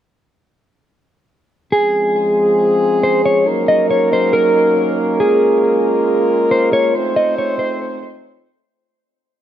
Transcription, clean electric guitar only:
1.72 2.99 G#4 loud
3.03 3.24 C5 medium
3.25 3.46 C#5 medium
3.68 3.89 D#5 medium
3.91 4.11 C#5 medium
4.13 4.33 C5 medium
4.33 5.16 A#4 medium
5.20 6.47 G#4 medium
6.51 6.72 C5 medium
6.73 6.94 C#5 medium
7.16 7.37 D#5 medium
7.38 7.59 C#5 medium
7.59 7.80 C5 medium

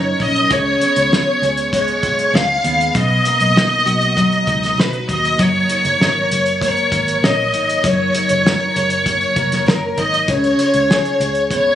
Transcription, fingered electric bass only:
0.00 0.14 F#1 medium
0.20 0.44 A#1 medium
0.51 0.75 C#2 loud
0.97 1.21 C#2 medium
1.42 2.03 C#2 medium
2.03 2.28 B1 medium
2.34 2.58 C#2 loud
2.64 2.89 D#2 medium
2.95 3.19 B1 loud
3.41 3.65 B1 loud
3.87 4.36 B1 medium
4.47 4.78 C#2 loud
4.78 5.03 B1 medium
5.09 5.34 D#2 medium
5.39 5.64 F#1 loud
5.85 5.97 F#1 loud
6.00 6.25 G#1 loud
6.31 6.80 F#1 medium
6.92 7.17 G#1 loud
7.23 7.53 A#1 loud
7.53 7.78 G#1 medium
7.84 8.09 F#1 loud
8.30 8.55 F#1 loud
8.76 9.25 F#1 loud
9.36 9.61 F1 medium
9.67 9.92 F#1 medium
9.98 10.23 G#1 medium
10.28 10.53 C#2 loud
10.74 10.99 C#2 medium
11.20 11.69 C#2 loud

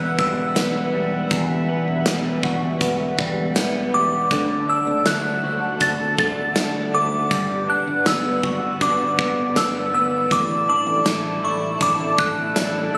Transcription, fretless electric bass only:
0.00 0.14 E1 loud
0.19 0.52 E1 medium
0.56 0.89 E1 medium
0.94 1.27 E1 medium
1.31 1.64 E1 loud
1.88 2.04 E1 medium
2.06 2.39 E1 medium
2.43 2.76 E1 medium
2.81 3.14 E1 loud
3.19 3.52 E1 medium
3.56 3.89 E1 loud
3.93 4.26 E1 loud
4.31 4.64 D2 medium
4.87 5.04 D2 medium
5.06 5.39 D2 medium
5.44 5.77 D2 medium
5.81 6.14 D2 loud
6.19 6.52 D2 medium
6.56 6.89 D2 medium
6.94 7.27 D2 loud
7.31 7.64 G1 loud
7.87 8.04 G1 medium
8.06 8.39 G1 loud
8.43 8.76 G1 medium
8.81 9.14 G1 loud
9.19 9.52 G1 medium
9.55 9.89 G1 loud
9.93 10.26 G1 medium
10.31 10.64 A1 medium
10.87 11.03 A1 loud
11.06 11.39 A1 loud
11.43 11.76 A1 medium
11.81 12.14 A1 loud
12.18 12.52 A1 medium
12.56 12.89 A1 loud
12.94 12.98 A1 medium

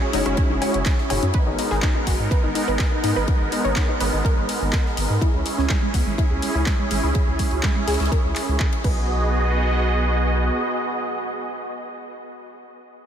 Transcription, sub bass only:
0.13 0.22 F#1 medium
0.26 0.34 F#1 medium
0.50 0.58 F#1 medium
0.74 0.82 F#1 medium
1.10 1.19 F#1 medium
1.23 1.31 F#2 medium
1.47 1.55 G#1 medium
1.71 1.79 G#1 medium
2.07 2.16 G#1 medium
2.19 2.28 G#2 medium
2.44 2.52 G#1 medium
2.68 2.76 G#1 medium
3.04 3.12 G#2 medium
3.16 3.24 G#1 medium
3.40 3.48 G#1 medium
3.65 3.73 G#1 medium
4.00 4.09 G#1 medium
4.13 4.21 G#1 medium
4.37 4.45 G#1 medium
4.61 4.69 G#1 medium
4.97 5.06 G#1 medium
5.10 5.18 G#2 medium
5.34 5.42 C#2 medium
5.58 5.66 C#2 medium
5.94 6.03 C#2 medium
6.07 6.15 G#1 medium
6.31 6.39 C#2 medium
6.55 6.63 C#2 medium
6.91 6.99 G#1 medium
7.03 7.11 C#2 medium
7.28 7.36 C#2 medium
7.52 7.60 C#2 medium
7.88 7.96 C#2 medium
8.00 8.08 C#2 medium
8.24 8.32 C#2 medium
8.48 8.57 C#2 medium
8.84 10.50 B1 medium

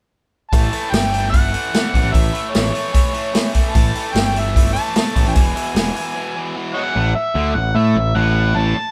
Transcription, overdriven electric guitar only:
0.53 0.72 A2 medium
0.53 0.73 E3 medium
0.53 0.72 A3 medium
0.72 0.92 A2 medium
0.72 0.93 E3 medium
0.72 0.93 A3 medium
0.92 1.11 A2 medium
0.92 1.12 E3 medium
0.92 1.12 A3 medium
1.12 1.32 A2 medium
1.12 1.32 E3 medium
1.12 1.33 A3 medium
1.33 1.51 A2 medium
1.33 1.53 E3 medium
1.33 1.53 A3 medium
1.52 1.72 A2 medium
1.52 1.73 E3 medium
1.52 1.73 A3 medium
1.73 1.95 A2 medium
1.73 1.96 E3 medium
1.73 1.95 A3 medium
1.95 2.12 A2 medium
1.95 2.13 E3 medium
1.95 2.13 A3 medium
2.13 2.33 A2 medium
2.13 2.33 E3 medium
2.13 2.34 A3 medium
2.33 2.53 A2 medium
2.33 2.53 E3 medium
2.33 2.54 A3 medium
2.54 2.73 A2 medium
2.54 2.73 E3 medium
2.54 2.73 A3 medium
2.73 2.92 A2 medium
2.73 2.92 E3 medium
2.73 2.93 A3 medium
2.93 3.12 A2 medium
2.93 3.13 E3 medium
2.93 3.13 A3 medium
3.13 3.32 A2 medium
3.13 3.34 E3 medium
3.13 3.33 A3 medium
3.33 3.51 A2 medium
3.33 3.54 E3 medium
3.33 3.53 A3 medium
3.52 3.73 A2 medium
3.52 3.74 E3 medium
3.52 3.75 A3 medium
3.75 3.94 A2 medium
3.75 3.96 E3 medium
3.75 3.95 A3 medium
3.95 4.12 A2 medium
3.95 4.14 E3 medium
3.95 4.14 A3 medium
4.14 4.33 A2 medium
4.14 4.35 E3 medium
4.14 4.34 A3 medium
4.34 4.54 A2 medium
4.34 4.56 E3 medium
4.34 4.55 A3 medium
4.56 4.74 A2 medium
4.56 4.76 E3 medium
4.56 4.76 A3 medium
4.75 4.95 A2 medium
4.75 4.97 E3 medium
4.75 4.96 A3 medium
4.96 5.13 A2 medium
4.96 5.14 E3 medium
4.96 5.14 A3 loud
5.14 5.34 A2 medium
5.14 5.35 E3 medium
5.14 5.35 A3 medium
5.34 5.53 E2 medium
5.34 5.54 B2 medium
5.34 5.54 E3 medium
5.55 5.74 E2 medium
5.55 5.75 B2 medium
5.55 5.76 E3 medium
5.76 5.94 E2 medium
5.76 5.94 B2 medium
5.76 5.95 E3 medium
5.95 6.14 E2 medium
5.95 6.15 B2 medium
5.95 6.15 E3 medium
6.15 6.34 E2 medium
6.15 6.35 B2 medium
6.15 6.35 E3 medium
6.35 6.55 E2 medium
6.35 6.56 B2 medium
6.35 6.56 E3 medium
6.56 6.75 E2 medium
6.56 6.76 B2 medium
6.56 6.76 E3 loud
6.76 6.95 E2 medium
6.76 6.95 B2 medium
6.76 6.96 E3 medium
6.95 7.14 A2 medium
7.15 muted overdriven electric guitar stroke medium
7.35 7.55 D3 medium
7.56 7.72 A2 medium
7.76 7.96 A3 medium
7.96 8.12 A2 medium
8.15 8.54 A2 loud
8.56 8.76 A2 loud
8.77 muted overdriven electric guitar stroke medium

